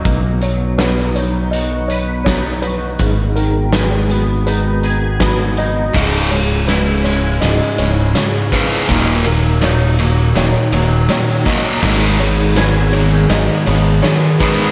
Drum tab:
CC |--------|--------|x-------|--------|
RD |--------|--------|-xxxxxxx|xxxxxxxx|
HH |xxxxxxxx|xxxxxxxx|--------|--------|
SD |--o---o-|--o---o-|o-o-o-o-|o-o-o-o-|
BD |o-----o-|o-----o-|o------o|o------o|

CC |x-------|
RD |-xxxxxxx|
HH |--------|
SD |o-o-o-o-|
BD |o------o|